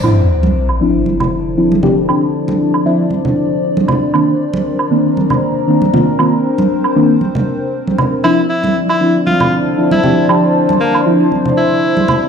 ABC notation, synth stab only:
X:1
M:4/4
L:1/16
Q:"Swing 16ths" 1/4=117
K:Dm
V:1 name="Synth stab"
[F,CDE]2 z4 [F,CDE]6 [F,CDE] z [F,CDG] z | [F,CDG] z4 z [F,CDE]2 z8 | [_E,B,CD]2 z4 [E,B,CD]6 [E,B,CD] z [E,B,CF] z | [_E,B,CF] z4 z [E,B,CD]2 z8 |
[F,CDE]2 z4 [F,CDE]6 [F,CDE] z [F,CDG] z | [F,CDG] z4 z [F,CDE]2 z8 |]